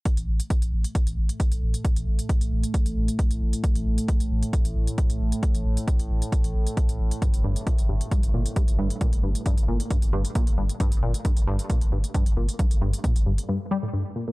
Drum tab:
HH |xx-xxx-xxx-xxx-x|xx-xxx-xxx-xxx-x|xx-xxx-xxx-xxx-x|xx-xxx-xxx-xxx-x|
BD |o---o---o---o---|o---o---o---o---|o---o---o---o---|o---o---o---o---|

HH |xx-xxx-xxx-xxx-x|xx-xxx-xxx-xxx-x|xx-xxx-xxx-xxx-x|xx-xxx-x--------|
BD |o---o---o---o---|o---o---o---o---|o---o---o---o---|o---o-----------|